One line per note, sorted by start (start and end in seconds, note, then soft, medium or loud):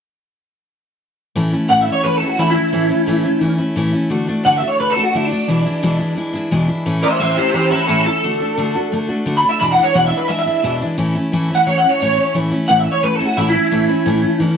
1.36 1.53 A2 medium
1.36 1.53 E3 medium
1.36 1.53 A3 medium
1.36 1.52 C#4 medium
1.36 1.51 E4 medium
1.52 1.69 A3 medium
1.52 1.69 C#4 medium
1.52 1.70 E4 medium
1.69 1.87 A2 medium
1.69 1.87 E3 medium
1.69 1.87 A3 medium
1.69 1.87 C#4 medium
1.69 1.87 E4 medium
1.69 1.81 F#5 medium
1.81 1.92 E5 medium
1.88 2.04 A3 soft
1.88 2.04 C#4 soft
1.88 2.05 E4 soft
1.92 2.04 C#5 medium
2.04 2.22 E3 medium
2.04 2.22 A3 medium
2.04 2.22 C#4 medium
2.04 2.21 E4 medium
2.04 2.17 B4 medium
2.17 2.27 A4 medium
2.22 2.38 A3 soft
2.22 2.38 C#4 soft
2.22 2.39 E4 medium
2.27 2.39 F#4 medium
2.39 2.56 A2 medium
2.39 2.56 E3 medium
2.39 2.56 A3 medium
2.39 2.55 C#4 medium
2.39 2.49 E4 medium
2.39 2.54 E4 medium
2.50 3.50 E4 loud
2.56 2.72 A3 soft
2.56 2.72 C#4 soft
2.56 2.73 E4 soft
2.72 2.90 A2 medium
2.72 2.90 E3 medium
2.72 2.89 A3 medium
2.72 2.89 C#4 medium
2.72 2.88 E4 medium
2.89 3.06 A3 soft
2.89 3.06 C#4 medium
2.89 3.07 E4 medium
3.06 3.24 A2 medium
3.06 3.25 E3 medium
3.06 3.24 A3 medium
3.06 3.23 C#4 loud
3.06 3.23 E4 medium
3.24 3.40 A3 soft
3.24 3.41 C#4 medium
3.24 3.42 E4 medium
3.41 3.59 E3 medium
3.41 3.59 A3 medium
3.41 3.58 C#4 medium
3.41 3.57 E4 medium
3.58 3.76 A3 medium
3.58 3.76 C#4 medium
3.58 3.76 E4 medium
3.76 3.94 A2 medium
3.76 3.94 E3 medium
3.76 3.94 A3 loud
3.76 3.93 C#4 medium
3.76 3.92 E4 loud
3.93 4.09 A3 soft
3.93 4.11 C#4 soft
3.93 4.11 E4 medium
4.10 4.28 D3 medium
4.10 4.28 A3 medium
4.10 4.27 D4 medium
4.10 4.26 F#4 medium
4.27 4.45 A3 medium
4.27 4.45 D4 medium
4.27 4.45 F#4 medium
4.45 4.63 D3 medium
4.45 4.62 A3 medium
4.45 4.62 D4 medium
4.45 4.61 F#4 medium
4.45 4.56 F#5 loud
4.58 4.68 E5 medium
4.62 4.79 A3 soft
4.62 4.79 D4 medium
4.62 4.79 F#4 medium
4.68 4.79 C#5 medium
4.79 4.97 D3 medium
4.79 4.97 A3 medium
4.79 4.96 D4 medium
4.79 4.95 F#4 medium
4.79 4.91 B4 medium
4.90 5.03 A4 medium
4.96 5.14 A3 soft
4.96 5.14 D4 medium
4.96 5.14 F#4 medium
5.03 5.15 F#4 medium
5.14 5.31 D3 medium
5.14 5.32 A3 medium
5.14 5.31 D4 medium
5.14 5.26 E4 medium
5.14 5.30 F#4 medium
5.26 6.26 D4 loud
5.31 5.48 A3 soft
5.31 5.48 D4 soft
5.31 5.48 F#4 medium
5.48 5.65 E2 medium
5.48 5.66 B2 medium
5.48 5.66 E3 medium
5.48 5.65 G#3 medium
5.48 5.65 D4 medium
5.48 5.64 E4 medium
5.65 5.82 E3 soft
5.65 5.82 G#3 medium
5.65 5.82 D4 medium
5.65 5.83 E4 medium
5.83 6.00 E2 medium
5.83 6.00 B2 medium
5.83 5.99 E3 medium
5.83 5.99 G#3 loud
5.83 5.98 D4 loud
5.83 5.97 E4 medium
5.99 6.15 E3 soft
5.99 6.16 G#3 medium
5.99 6.16 D4 medium
5.99 6.17 E4 medium
6.16 6.34 E3 medium
6.16 6.34 G#3 medium
6.16 6.33 D4 medium
6.16 6.32 E4 medium
6.33 6.51 E3 medium
6.33 6.51 G#3 medium
6.33 6.52 D4 medium
6.33 6.51 E4 medium
6.51 6.69 E2 medium
6.51 6.69 B2 medium
6.51 6.69 E3 medium
6.51 6.68 G#3 loud
6.51 6.68 D4 medium
6.51 6.67 E4 loud
6.68 6.85 E3 soft
6.68 6.86 G#3 soft
6.68 6.86 D4 medium
6.68 6.86 E4 medium
6.86 7.03 A2 medium
6.86 7.03 E3 medium
6.86 7.03 A3 medium
6.86 7.02 C#4 medium
6.86 7.02 E4 medium
7.03 7.19 A3 soft
7.03 7.19 C#4 medium
7.03 7.19 E4 medium
7.03 7.19 C5 medium
7.03 7.19 E5 medium
7.20 7.37 A2 medium
7.20 7.37 E3 medium
7.20 7.37 A3 medium
7.20 7.37 C#4 medium
7.20 7.36 E4 medium
7.20 7.36 C5 medium
7.20 7.37 E5 medium
7.37 7.54 A3 soft
7.37 7.54 C#4 soft
7.37 7.54 E4 soft
7.37 7.53 G4 medium
7.37 7.53 C5 loud
7.54 7.71 E3 medium
7.54 7.72 A3 medium
7.54 7.71 C#4 medium
7.54 7.70 E4 medium
7.54 7.70 G4 medium
7.54 7.71 C5 medium
7.71 7.88 A3 soft
7.71 7.88 C#4 medium
7.71 7.86 E4 medium
7.71 7.88 E4 medium
7.71 7.86 A4 medium
7.87 8.06 A2 medium
7.87 8.06 E3 medium
7.87 8.06 A3 medium
7.87 8.06 C#4 medium
7.87 8.04 E4 medium
7.87 8.05 E4 medium
7.87 8.05 A4 medium
8.06 8.23 A3 soft
8.06 8.24 C#4 soft
8.06 8.23 E4 soft
8.06 9.06 A4 loud
8.23 8.41 D3 medium
8.23 8.41 A3 medium
8.23 8.40 D4 medium
8.23 8.39 F#4 medium
8.40 8.57 A3 soft
8.40 8.57 D4 medium
8.40 8.58 F#4 medium
8.58 8.75 D3 medium
8.58 8.75 A3 medium
8.58 8.75 D4 loud
8.58 8.74 F#4 medium
8.75 8.91 A3 soft
8.75 8.92 D4 medium
8.75 8.92 F#4 medium
8.92 9.09 D3 medium
8.92 9.09 A3 medium
8.92 9.09 D4 medium
8.92 9.08 F#4 medium
9.09 9.26 A3 medium
9.09 9.26 D4 medium
9.09 9.26 F#4 medium
9.26 9.43 D3 medium
9.26 9.44 A3 medium
9.26 9.43 D4 medium
9.26 9.42 F#4 loud
9.37 9.49 B5 loud
9.44 9.62 A3 soft
9.44 9.61 D4 soft
9.44 9.61 F#4 medium
9.49 9.60 E5 loud
9.60 9.78 E2 medium
9.60 9.78 B2 medium
9.60 9.78 E3 medium
9.60 9.77 G#3 medium
9.60 9.77 D4 medium
9.60 9.76 E4 medium
9.60 9.71 B5 loud
9.72 9.83 F#5 loud
9.78 9.94 E3 soft
9.78 9.94 G#3 medium
9.78 9.94 D4 medium
9.78 9.94 E4 medium
9.83 9.94 C#5 loud
9.94 10.12 E2 medium
9.94 10.12 B2 medium
9.94 10.11 E3 medium
9.94 10.11 G#3 medium
9.94 10.10 D4 medium
9.94 10.09 E4 medium
9.94 10.06 F#5 loud
10.06 10.17 E5 medium
10.10 10.27 E3 soft
10.10 10.28 G#3 soft
10.10 10.29 D4 medium
10.10 10.28 E4 medium
10.17 10.29 B4 loud
10.28 10.46 E3 medium
10.28 10.46 G#3 medium
10.28 10.46 D4 medium
10.28 10.45 E4 medium
10.28 10.38 E5 loud
10.39 10.73 E5 loud
10.46 10.63 E3 soft
10.46 10.63 G#3 medium
10.46 10.64 D4 medium
10.46 10.63 E4 medium
10.63 10.81 E2 medium
10.63 10.81 B2 medium
10.63 10.81 E3 medium
10.63 10.81 G#3 medium
10.63 10.81 D4 medium
10.63 10.80 E4 medium
10.81 10.96 E3 soft
10.81 10.98 G#3 soft
10.81 10.98 D4 medium
10.81 10.98 E4 medium
10.98 11.15 A2 medium
10.98 11.15 E3 medium
10.98 11.15 A3 medium
10.98 11.15 C#4 medium
10.98 11.14 E4 medium
11.15 11.32 A3 medium
11.15 11.32 C#4 medium
11.15 11.32 E4 medium
11.32 11.50 A2 medium
11.32 11.50 E3 medium
11.32 11.50 A3 medium
11.32 11.50 C#4 medium
11.32 11.49 E4 medium
11.50 11.66 A3 soft
11.50 11.67 C#4 soft
11.50 11.67 E4 soft
11.55 11.66 F#5 medium
11.67 11.84 E3 medium
11.67 11.84 A3 medium
11.67 11.84 C#4 medium
11.67 11.83 E4 medium
11.67 11.78 C#5 medium
11.78 11.89 F#5 loud
11.84 12.01 A3 soft
11.84 12.01 C#4 medium
11.84 12.01 E4 medium
11.89 11.99 C#5 medium
12.00 12.18 A2 medium
12.00 12.19 E3 medium
12.00 12.18 A3 medium
12.00 12.17 C#4 medium
12.00 12.16 E4 medium
12.00 12.34 C#5 loud
12.17 12.34 A3 soft
12.17 12.34 C#4 soft
12.17 12.35 E4 medium
12.34 12.52 A2 medium
12.34 12.52 E3 medium
12.34 12.53 A3 medium
12.34 12.51 C#4 medium
12.34 12.50 E4 medium
12.51 12.68 A3 soft
12.51 12.69 C#4 medium
12.51 12.69 E4 medium
12.68 12.87 A2 medium
12.68 12.87 E3 medium
12.68 12.86 A3 medium
12.68 12.85 C#4 medium
12.68 12.84 E4 medium
12.68 12.79 F#5 medium
12.79 12.91 E5 medium
12.85 13.02 A3 soft
12.85 13.03 C#4 medium
12.85 13.03 E4 medium
12.92 13.03 C#5 medium
13.03 13.21 E3 medium
13.03 13.21 A3 medium
13.03 13.19 C#4 medium
13.03 13.19 E4 medium
13.03 13.15 B4 medium
13.15 13.25 A4 loud
13.20 13.37 A3 soft
13.20 13.37 C#4 medium
13.20 13.38 E4 medium
13.25 13.37 F#4 medium
13.37 13.55 A2 medium
13.37 13.55 E3 medium
13.37 13.55 A3 medium
13.37 13.55 C#4 medium
13.37 13.48 E4 medium
13.37 13.53 E4 medium
13.49 14.49 E4 loud
13.54 13.71 A3 soft
13.54 13.71 C#4 medium
13.54 13.71 E4 medium
13.71 13.89 A2 medium
13.71 13.89 E3 medium
13.71 13.90 A3 medium
13.71 13.88 C#4 medium
13.71 13.88 E4 medium
13.89 14.05 A3 soft
13.89 14.06 C#4 medium
13.89 14.06 E4 medium
14.06 14.24 A2 medium
14.06 14.24 E3 medium
14.06 14.23 A3 medium
14.06 14.22 C#4 loud
14.06 14.21 E4 loud
14.22 14.40 A3 medium
14.22 14.40 C#4 medium
14.22 14.40 E4 medium
14.40 14.57 E3 medium
14.40 14.57 A3 medium
14.40 14.57 C#4 medium
14.40 14.56 E4 medium